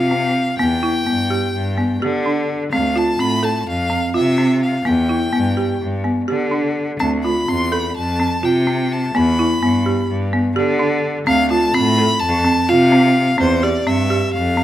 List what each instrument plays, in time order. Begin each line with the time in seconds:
Already playing: cello C3, violin F5
0.11 marimba C4
0.59 cello E2, marimba B3, violin G5
0.83 marimba E4
1.06 cello G2, marimba B3
1.30 marimba G4
1.54 cello G2
1.78 marimba B3
2.01 cello D3, marimba G4
2.26 marimba D4
2.73 cello D2, marimba C4, violin F5
2.96 marimba F4, violin A5
3.19 cello A2, marimba C4, violin B5
3.43 marimba A4, violin A5
3.67 cello F2, violin F5
3.90 marimba C4
4.14 cello C3, marimba F4, violin E5
4.38 marimba C4
4.63 violin F5
4.85 cello E2, marimba B3, violin G5
5.09 marimba E4
5.32 cello G2, marimba B3
5.57 marimba G4
5.81 cello G2
6.04 marimba B3
6.28 cello D3, marimba G4
6.51 marimba D4
7.00 cello D2, marimba C4, violin A5
7.24 marimba F4, violin B5
7.48 cello E2, marimba C4, violin C6
7.72 marimba A4, violin B5
7.96 cello F2, violin A5
8.20 marimba C4
8.43 cello C3, marimba F4, violin G5
8.67 marimba C4
8.93 violin A5
9.14 cello E2, marimba B3, violin B5
9.39 marimba E4
9.62 cello G2, marimba B3
9.86 marimba G4
10.09 cello G2
10.33 marimba B3
10.56 cello D3, marimba G4
10.79 marimba D4
11.27 cello D2, marimba C4, violin F5
11.50 marimba F4, violin A5
11.74 cello A2, marimba C4, violin B5
11.98 marimba A4
12.20 cello F2, violin A5
12.45 marimba C4
12.69 cello C3, marimba F4, violin F5
12.92 marimba C4
13.38 cello E2, marimba C4, violin C5
13.63 marimba G4, violin D5
13.86 cello G2, marimba C4, violin E5
14.10 marimba G4
14.33 cello F2, violin F5
14.57 marimba C4